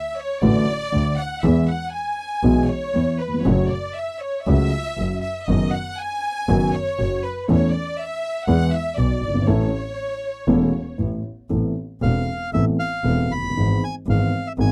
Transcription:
Already playing: violin section E5
0.17 violin section C#5
0.41 double bass A1, grand piano A1 A2 D3 F#3 A3 F#4, violin section D5
0.92 grand piano D2 D3, double bass D2
1.17 violin section F#5
1.42 grand piano E2 E3 G#3 B3 G#4, double bass E2, violin section E5
1.68 violin section F#5
1.93 violin section G#5
2.43 double bass B1, grand piano B1 B2 E3 G#3 B3 G#4
2.69 violin section C#5
2.94 double bass E2, grand piano E2 E3
3.20 violin section B4
3.28 grand piano D#2
3.34 grand piano E2
3.41 grand piano F2, violin section C#5
3.45 double bass F#1, grand piano F#2 C#3 F#3 A3 F#4
3.69 violin section D5
3.95 violin section E5
4.21 violin section C#5
4.45 double bass C#2, grand piano C#2 C#3 F#3 A3 F#4, violin section E5
4.98 double bass F#1, grand piano F#2 F#3
5.22 violin section E5
5.46 double bass F#1, grand piano F#2 D#3 F#3 B3 F#4, violin section D#5
5.72 violin section F#5
5.98 violin section G#5
6.48 double bass F#1, grand piano F#2 D#3 F#3 B3 F#4
6.74 violin section C#5
6.98 double bass F#1, grand piano F#2 F#3
7.24 violin section B4
7.48 grand piano E2 E3 A3 C#4 A4, double bass E2, violin section C#5
7.72 violin section D5
7.99 violin section E5
8.47 double bass E2, grand piano E2 E3 G#3 B3 G#4, violin section F#5
8.73 violin section E5
8.97 double bass B1, grand piano B1 B2, violin section D5
9.22 double bass G1
9.28 grand piano F#1
9.34 grand piano G1
9.41 grand piano G#1
9.46 double bass A1, grand piano A1 A2 E3 A3 C#4 A4, violin section C#5
10.47 grand piano E1 E2 E3 A3 C#4 A4, double bass E1
10.98 grand piano A1 A2, double bass A1
11.49 double bass A1, grand piano A1 A2 E3 B3 C4 A4
12.02 double bass E1, grand piano E1 E2 E3 B3 C4 A4, bandoneon F5
12.53 double bass A1, grand piano A1 A2 E3 B3 C4 A4, bandoneon E5
12.79 bandoneon F5
13.04 double bass E1, grand piano E1 E2 E3 B3 C4 A4
13.30 double bass F#1, bandoneon B5
13.37 grand piano F1
13.44 grand piano F#1
13.50 grand piano G1
13.55 double bass G#1, grand piano G#1 G#2 E3 G#3 B3 G#4
13.84 bandoneon G#5
14.07 double bass G#1, grand piano G#1 G#2 E3 G#3 B3 G#4, bandoneon F5
14.47 bandoneon E5
14.58 double bass G#1, grand piano G#1 G#2 E3 G#3 B3 G#4, bandoneon G#5

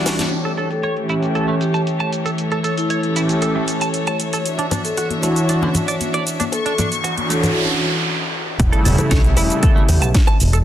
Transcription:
Already playing: analog synth pad E3 G3 D4 F#4, string section G3 F#4 D5
0.06 snare, open hi-hat, high bongo, cabasa
0.19 snare, closed hi-hat, high conga, cabasa
0.32 string section E3 A3 G4 C#5, closed hi-hat, cabasa
0.45 clean electric guitar A4, closed hi-hat
0.57 clean electric guitar A4, closed hi-hat, cabasa
0.71 vibraphone A4, closed hi-hat, cabasa
0.83 clean electric guitar C#5, closed hi-hat, cabasa
0.96 analog synth pad E3 A3 C#4 G4, closed hi-hat
1.09 clean electric guitar E4, closed hi-hat, cabasa
1.23 closed hi-hat, cabasa
1.35 analog synth pad E3 A3 C#4 G4, clean electric guitar A4, closed hi-hat, cabasa
1.48 clean electric guitar A3
1.61 vibraphone G4, closed hi-hat, cabasa
1.74 clean electric guitar A5, closed hi-hat, cabasa
1.87 closed hi-hat, cabasa
2.00 clean electric guitar A5, closed hi-hat
2.13 closed hi-hat, cabasa
2.26 clean electric guitar A4, closed hi-hat, cabasa
2.38 string section A4, closed hi-hat, cabasa
2.52 clean electric guitar A4, closed hi-hat
2.64 clean electric guitar A4, closed hi-hat, cabasa
2.77 vibraphone E4, closed hi-hat, cabasa
2.90 clean electric guitar C#5, closed hi-hat, cabasa
3.03 analog synth pad E3 A3 C#4 G4, closed hi-hat
3.16 clean electric guitar E4, closed hi-hat, cabasa
3.29 closed hi-hat, cabasa
3.42 analog synth pad E3 A3 C#4 G4, clean electric guitar A4, closed hi-hat, cabasa
3.55 clean electric guitar A3
3.68 closed hi-hat, cabasa
3.81 clean electric guitar A5, closed hi-hat, cabasa
3.94 closed hi-hat, cabasa
4.07 clean electric guitar A5, closed hi-hat
4.20 closed hi-hat, cabasa
4.33 clean electric guitar A4, closed hi-hat, cabasa
4.45 string section D4 F#4 E5, closed hi-hat, cabasa
4.59 clean electric guitar D4, closed hi-hat, cabasa
4.71 clean electric guitar D4, closed hi-hat, high bongo, high conga, low conga, cabasa
4.84 vibraphone A4, closed hi-hat, cabasa
4.97 clean electric guitar F#4, closed hi-hat, cabasa
5.10 analog synth pad E3 D4 F#4 C#5, closed hi-hat, high conga, cabasa
5.23 clean electric guitar A3, vibraphone E4, closed hi-hat, high bongo, cabasa
5.36 closed hi-hat, cabasa
5.48 analog synth pad E3 C#4 D4 F#4, clean electric guitar D4, closed hi-hat, cabasa
5.62 clean electric guitar D3, high bongo, high conga, cabasa
5.74 closed hi-hat, low conga, cabasa
5.88 clean electric guitar D5, closed hi-hat, cabasa
6.00 closed hi-hat, high conga, cabasa
6.13 clean electric guitar D5, closed hi-hat, high bongo, cabasa
6.27 closed hi-hat, cabasa
6.40 clean electric guitar D4, closed hi-hat, high conga, cabasa
6.52 vibraphone A4, string section C#6, closed hi-hat, high bongo, noise sweep, cabasa
6.66 clean electric guitar D4, vibraphone A4, closed hi-hat, cabasa
6.78 clean electric guitar D4, closed hi-hat, high conga, low conga, cabasa
6.91 closed hi-hat, cabasa
7.04 clean electric guitar F#4, closed hi-hat, high bongo, cabasa
7.17 analog synth pad E3 D4 F#4 C#5, closed hi-hat, high conga, cabasa
7.30 clean electric guitar A3, vibraphone A4, closed hi-hat, cabasa
7.43 closed hi-hat, high bongo, low conga, cabasa
7.55 analog synth pad E3 C#4 D4 F#4
8.58 fingered electric bass E1, analog synth pad C#3 G3 A3 E4, kick, closed hi-hat, cabasa
8.72 clean electric guitar A4, closed hi-hat, cabasa
8.85 fingered electric bass E1, clean electric guitar A4, open hi-hat, high conga, cabasa
8.98 vibraphone A4, closed hi-hat, high bongo, low conga, cabasa
9.11 fingered electric bass B1, clean electric guitar C#5, kick, snare, closed hi-hat, cabasa
9.24 analog synth pad C#3 G3 A3 E4, closed hi-hat, cabasa
9.37 fingered electric bass E1, clean electric guitar E4, open hi-hat, high bongo, cabasa
9.50 closed hi-hat, cabasa
9.62 analog synth pad C#3 G3 A3 E4, clean electric guitar A4, kick, closed hi-hat, high conga, cabasa
9.76 clean electric guitar A3, cabasa
9.89 fingered electric bass E2, vibraphone G4, open hi-hat, high bongo, cabasa
10.02 fingered electric bass B1, clean electric guitar A5, closed hi-hat, cabasa
10.14 kick, snare, closed hi-hat, cabasa
10.27 clean electric guitar A5, closed hi-hat, high bongo, cabasa
10.40 fingered electric bass E1, open hi-hat, cabasa
10.53 clean electric guitar A4, closed hi-hat, cabasa

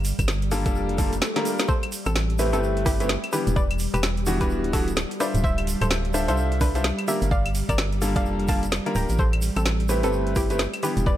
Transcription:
Already playing: fm bass G1, string machine G3
0.05 open hi-hat, shaker
0.19 fm bass G1, kick, cross-stick, closed hi-hat, claves, shaker
0.28 snare, shaker
0.42 closed hi-hat
0.51 grand piano G3 A#3 D4 F4 A4, open hi-hat, shaker
0.66 fm bass F1, grand piano G3 A#3 D4 F4 A4, kick, closed hi-hat, shaker
0.75 swell, shaker
0.89 closed hi-hat
0.98 grand piano G3 A#3 D4 F4 A4, kick, open hi-hat, shaker
1.13 closed hi-hat, shaker
1.22 snare, shaker
1.36 grand piano G3 A#3 D4 F4 A#4, snare, closed hi-hat
1.45 open hi-hat, shaker
1.58 snare, closed hi-hat, shaker
1.68 string machine G3, synth pluck A4 C5, kick, shaker
1.83 closed hi-hat, claves
1.92 open hi-hat, shaker
2.06 fm bass A1, synth pluck C4 A4, cross-stick, closed hi-hat, claves, shaker
2.16 snare, shaker
2.30 closed hi-hat
2.39 grand piano A3 C4 E4 G4 B4, cross-stick, open hi-hat, shaker
2.53 fm bass G1, grand piano A3 C4 E4 G4 B4, synth pluck C4 A4, closed hi-hat, shaker
2.63 shaker
2.77 closed hi-hat
2.86 synth pluck E4 G4, kick, cross-stick, open hi-hat, shaker
3.00 grand piano A3 C4 E4 G4 B4, closed hi-hat, shaker
3.09 snare, shaker
3.24 closed hi-hat, claves
3.33 grand piano E3 G3 B3 D4 G4, synth pluck G4 B4, open hi-hat, shaker
3.47 fm bass E1, closed hi-hat, shaker
3.56 synth pluck B4 D5, kick, shaker
3.71 closed hi-hat, claves
3.79 open hi-hat, shaker
3.94 fm bass E1, synth pluck G4 B4, cross-stick, closed hi-hat, claves, shaker
4.03 snare, shaker
4.17 closed hi-hat
4.26 grand piano E3 G3 B3 D4 F#4, open hi-hat, shaker
4.41 fm bass D1, grand piano E3 G3 B3 D4 F#4, synth pluck G4 B4, kick, closed hi-hat, shaker
4.50 shaker
4.64 closed hi-hat
4.73 grand piano E3 G3 B3 D4 F#4, synth pluck F#4 A4, kick, open hi-hat, shaker
4.88 closed hi-hat, shaker
4.96 snare, shaker
5.11 closed hi-hat
5.20 grand piano D4 F4 A4 C5 E5, synth pluck B4 D5, cross-stick, open hi-hat, shaker
5.34 fm bass D1, closed hi-hat, shaker
5.44 synth pluck C5 E5, kick, shaker
5.58 closed hi-hat, claves
5.67 open hi-hat, shaker
5.81 fm bass D1, synth pluck A4 C5, cross-stick, closed hi-hat, claves, shaker
5.91 snare, shaker
6.05 closed hi-hat
6.14 grand piano D4 F4 A4 C5 E5, cross-stick, open hi-hat, shaker
6.28 fm bass C2, grand piano D4 F4 A4 C5 E5, synth pluck A4 C5, closed hi-hat, shaker
6.37 shaker
6.52 closed hi-hat
6.61 synth pluck D4 B4, kick, cross-stick, open hi-hat, shaker
6.75 grand piano D4 F4 A4 C5 E5, closed hi-hat, shaker
6.84 snare, shaker
6.99 closed hi-hat, claves
7.08 grand piano G3 A#3 D4 F4 A#4, synth pluck G4 E5, open hi-hat, shaker
7.22 fm bass G1, closed hi-hat, shaker
7.31 synth pluck D5 F5, kick, shaker
7.46 closed hi-hat, claves
7.55 open hi-hat, shaker
7.69 fm bass G1, synth pluck A#4 D5, kick, cross-stick, closed hi-hat, claves, shaker
7.78 snare, shaker
7.92 closed hi-hat
8.02 grand piano G3 A#3 D4 F4 A4, open hi-hat, shaker
8.15 fm bass F1, grand piano G3 A#3 D4 F4 A4, synth pluck D5 F5, kick, closed hi-hat, shaker
8.25 shaker
8.40 closed hi-hat
8.48 grand piano G3 A#3 D4 F4 A4, synth pluck F5 A5, kick, open hi-hat, shaker
8.63 closed hi-hat, shaker
8.72 snare, shaker
8.86 grand piano G3 A#3 D4 F4 A#4, closed hi-hat
8.95 fm bass D1, synth pluck G5 A#5, cross-stick, open hi-hat, shaker
9.09 fm bass A1, closed hi-hat, shaker
9.18 synth pluck A4 C5, kick, shaker
9.33 closed hi-hat, claves
9.42 open hi-hat, shaker
9.56 fm bass A1, synth pluck C4 A4, cross-stick, closed hi-hat, claves, shaker
9.66 snare, shaker
9.80 closed hi-hat
9.89 grand piano A3 C4 E4 G4 B4, cross-stick, open hi-hat, shaker
10.03 fm bass G1, grand piano A3 C4 E4 G4 B4, synth pluck C4 A4, closed hi-hat, shaker
10.13 shaker
10.27 closed hi-hat
10.36 synth pluck E4 G4, kick, cross-stick, open hi-hat, shaker
10.50 grand piano A3 C4 E4 G4 B4, closed hi-hat, shaker
10.59 snare, shaker
10.74 closed hi-hat, claves
10.83 grand piano E3 G3 B3 D4 G4, synth pluck G4 B4, open hi-hat, shaker
10.97 fm bass E1, closed hi-hat, shaker
11.06 synth pluck B4 D5, kick, shaker

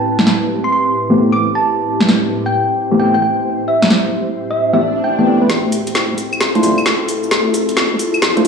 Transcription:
Already playing: ambient pad A2 C4 E4 G4 B4
0.19 snare
0.27 snare
0.64 synth pluck C6
0.72 synth pluck C6
1.10 synth stab E3 A3 B3 C4 G4
1.18 synth stab E3 A3 B3 C4 G4
1.32 synth pluck D6
1.55 synth pluck A5
1.63 ambient pad C5
2.01 snare
2.09 snare
2.46 synth pluck G5
2.92 synth stab E3 A3 B3 C4 G4
2.99 synth stab E3 A3 B3 C4 G4, synth pluck G5
3.14 synth pluck G5
3.22 synth pluck G5
3.68 synth pluck E5
3.82 synth pluck E5, snare
3.90 snare
4.51 synth pluck E5
4.59 swell
4.73 synth stab E3 A3 B3 C4 G4, synth pluck E5
4.81 synth pluck E5
5.04 synth pluck G5
5.19 synth stab E3 A3 B3 C4 G4, synth pluck G5
5.27 synth stab E3 A3 B3 C4 G4
5.42 synth stab E3 A3 B3 C4 B4
5.50 wobble bass D2, ambient pad C4 E4 F4 A4, snare, closed hi-hat, shaker
5.72 open hi-hat, shaker
5.87 closed hi-hat, shaker
5.95 snare, closed hi-hat, shaker
6.10 wobble bass D2
6.18 open hi-hat, shaker
6.33 claves, shaker
6.41 snare, closed hi-hat, shaker
6.55 synth stab A3 D4 E4 F4 C5, closed hi-hat
6.63 wobble bass A1, synth stab A3 D4 E4 F4 C5, open hi-hat, shaker
6.78 claves, shaker
6.86 snare, closed hi-hat, shaker
7.09 open hi-hat, shaker
7.23 shaker
7.31 wobble bass D2, snare, closed hi-hat, shaker
7.54 open hi-hat, shaker
7.69 closed hi-hat, shaker
7.77 snare, closed hi-hat, shaker
7.91 wobble bass D2
7.99 open hi-hat, shaker
8.14 claves, shaker
8.22 wobble bass D1, snare, closed hi-hat, shaker
8.37 synth stab A3 D4 E4 F4 C5, closed hi-hat

